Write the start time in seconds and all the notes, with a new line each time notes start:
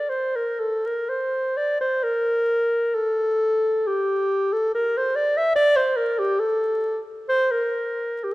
Already playing: D5
0.10 C5
0.36 A#4
0.60 A4
0.86 A#4
1.09 C5
1.57 D5
1.81 C5
2.03 A#4
2.95 A4
3.87 G4
4.53 A4
4.75 A#4
4.97 C5
5.16 D5
5.37 E5
5.56 D5
5.76 C5
5.96 A#4
6.19 G4
6.40 A4
7.29 C5
7.51 A#4
8.24 G4